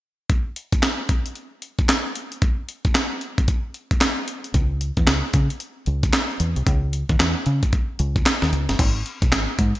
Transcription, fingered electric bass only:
4.54 C#2
4.97 E2
5.08 C#2
5.34 C#3
5.87 C#2
6.40 E2
6.56 C2
6.67 C#2
7.10 D#2
7.20 E2
7.46 C#3
8.00 C#2
8.42 D#2
8.53 C#2
8.69 G1
8.79 G#1
9.22 B1
9.32 G#1
9.59 G#2

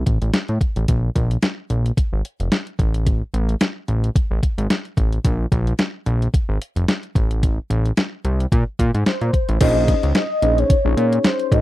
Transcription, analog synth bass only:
0.06 A1
0.22 A1
0.49 A2
0.76 A1
0.88 A#1
1.15 A#1
1.70 A#1
2.13 G#1
2.40 F1
2.79 A1
3.34 A1
3.88 A1
4.31 A1
4.58 G#1
4.97 A1
5.25 A#1
5.52 A#1
6.06 A#1
6.49 G#1
6.76 F1
7.15 A1
7.70 A1
8.25 C2
8.52 A#2
8.79 A#2
8.94 G#2
9.21 A#2
9.49 A1
9.61 A#1
10.03 C#2
10.42 A#1
10.85 A#1
10.97 A#2
11.52 A1

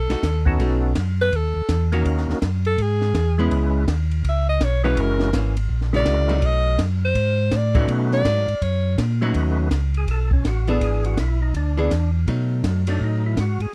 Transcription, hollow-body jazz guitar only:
0.10 A3 D#4 F#4
0.61 A3 D#4 F#4
1.93 D#3 A#3 C#4 F#4
3.39 G#3 B3 E4
4.84 E3 A#3 C#4
5.33 E3 A#3 C#4
6.29 F#3 A3 D#4
7.75 F#3 A3 D#4
8.25 F#3 A3 D#4
9.22 F#3 A3 D#4
10.68 E3 B3 D4 G#4
11.77 E3 B3 D4 G#4
12.28 F#3 A3 D#4
12.88 F#3 A3 D#4

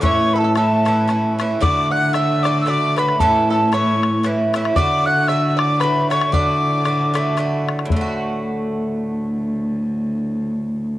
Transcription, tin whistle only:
0.03 C#6
0.33 B5
0.38 A5
0.56 A5
1.62 D6
1.92 F#6
2.13 E6
2.43 D6
2.61 E6
2.67 D6 E6
2.98 B5
3.20 A5
3.52 A5
3.74 C#6
4.76 D6
5.06 F#6
5.28 E6
5.58 D6
5.81 B5
6.11 C#6
6.33 D6

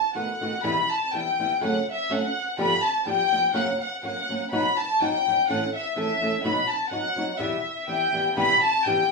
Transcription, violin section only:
Already playing: A5
0.16 F#5
0.64 B5
0.93 A5
1.14 G5
1.64 F#5
1.92 E5
2.11 F#5
2.61 B5
2.85 A5
3.08 G5
3.57 F#5
3.81 F#5
4.06 F#5
4.53 B5
4.79 A5
5.01 G5
5.50 F#5
5.77 E5
5.98 E5
6.47 B5
6.69 A5
6.90 F#5
7.40 E5
7.88 G5
8.39 B5
8.65 A5
8.86 G5

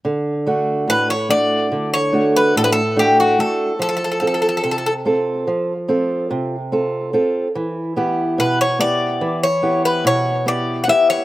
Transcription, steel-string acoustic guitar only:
0.05 D3
0.47 A3 D4 F#4
0.88 A2
1.29 A3 D4 F#4
1.72 D3
2.12 A3 D4 F#4
2.56 A2
2.96 A3 D4 F#4
3.38 A3 D4 F#4
3.79 F3
4.21 C4 F4 A4
4.64 C3
5.05 C4 F4 A4
5.47 F3
5.88 C4 F4 A4
6.31 C3
6.72 C4 F4 A4
7.13 C4 F4 A4
7.55 E3
7.97 B3 E4 G4
8.38 B2
8.79 B3 E4 G4
9.21 E3
9.62 B3 E4 G4
10.05 B2
10.46 B3 E4 G4
10.87 B3 E4 G4

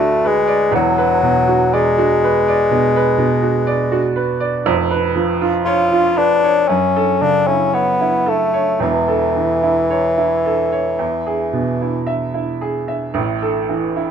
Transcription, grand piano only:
Already playing: D2 D3 B4 D5
0.00 F#4
0.24 B4
0.48 D5
0.71 E1 E2
0.98 B4
1.23 B2
1.48 F#4
1.73 D5
1.98 F#4
2.24 B4
2.48 D5
2.71 B2
2.96 B4
3.18 B2
3.43 F#4
3.67 D5
3.92 F#4
4.16 B4
4.40 D5
4.65 F1 F2
4.91 B4
5.16 F3
5.41 F4
5.66 C#5
5.92 F4
6.18 B4
6.44 C#5
6.69 F#2
6.96 A4
7.21 C#3
7.48 E4
7.74 C#5
8.01 E4
8.26 A4
8.54 C#5
8.79 E1 E2
9.08 A4
9.36 E3
9.63 E4
9.90 C#5
10.18 E4
10.46 A4
10.72 C#5
10.99 E2
11.26 G#4
11.53 B2
11.81 E4
12.07 E5
12.34 E4
12.61 G#4
12.88 E5
13.14 A1 A2
13.42 A4
13.69 E3
13.96 E4

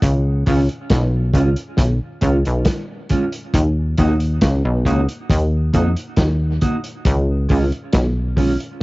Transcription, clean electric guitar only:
0.46 G#3 C#4 F4
1.34 G#3 C#4 F4
2.21 G#3 C#4 F4
3.10 G#3 C#4 F4
3.99 A#3 D#4 F#4
4.86 A#3 D#4 F#4
5.73 A#3 D#4 F#4
6.61 A#3 D#4 F#4
7.49 G#3 C#4 F4
8.36 G#3 C#4 F4

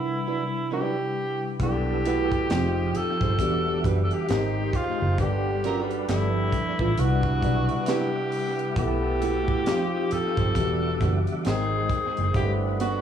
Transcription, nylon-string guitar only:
0.27 F#3 D4 E4 B4
0.71 F#3 D4 E4 B4
2.06 A3 E4 F#4 B4
3.23 G#3 D#4 G4 C5
3.85 G3 D4 F#4 B4
5.64 F#3 C#4 F4 A#4
5.81 G3 D4 F#4 B4
6.80 A3 D4 F4 B4
7.42 F#3 D4 E4 B4
7.88 F#3 D4 E4 B4
9.22 A3 E4 F#4 B4
10.38 G#3 D#4 G4 C5
11.01 G3 D4 F#4 B4
12.80 B3 D4 F#4 B4

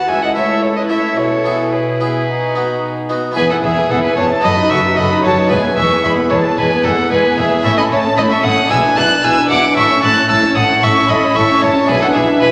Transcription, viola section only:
0.08 E4
2.27 D#4
3.36 B3
3.50 E4
3.63 B3
3.77 E4
3.90 B3
4.03 E4
4.16 B3
4.30 E4
4.44 F#4
4.57 D#4
4.71 F#4
4.85 D#4
4.98 F#4
5.11 D#4
5.24 F#4
5.37 D#4
5.51 G#3
5.64 B3
5.78 G#3
5.92 B3
6.05 G#3
6.18 B3
6.31 G#3
6.44 B3
6.57 G#3
6.71 B3
6.84 G#3
6.98 B3
7.11 G#3
7.24 B3
7.38 G#3
7.51 B3
7.64 A3
7.77 C#4
7.91 A3
8.04 C#4
8.17 A3
8.31 C#4
8.44 A3
8.58 C#4
8.70 E4
8.83 D4
8.96 E4
9.09 D4
9.23 E4
9.36 D4
9.50 E4
9.64 D4
9.77 E4
9.91 C#4
10.04 E4
10.17 C#4
10.30 E4
10.43 C#4
10.55 E4
10.68 C#4
10.82 E4
10.95 C#4
11.08 E4
11.22 C#4
11.35 E4
11.48 C#4
11.62 E4
11.75 C#4
11.88 E4
12.02 D4
12.15 E4
12.28 D4
12.41 E4

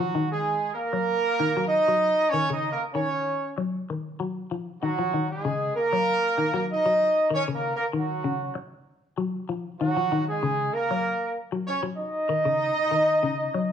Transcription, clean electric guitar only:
0.00 F3
0.15 D#3
0.93 F#3
1.40 D#3
1.57 F#3
1.88 F#3
2.33 D#3
2.50 C#3
2.95 D#3
3.58 F#3
3.90 D#3
4.20 F#3
4.51 F3
4.83 D#3
4.99 F3
5.14 D#3
5.45 C#3
5.93 F#3
6.38 D#3
6.54 F#3
6.86 F#3
7.30 D#3
7.48 C#3
7.93 D#3
8.24 C#3
8.55 muted clean electric guitar stroke
9.18 F#3
9.49 F3
9.81 D#3
9.97 F3
10.12 D#3
10.43 C#3
10.91 F#3
11.52 F#3
11.83 F#3
12.29 D#3
12.45 C#3
12.91 D#3
13.23 C#3
13.54 F#3

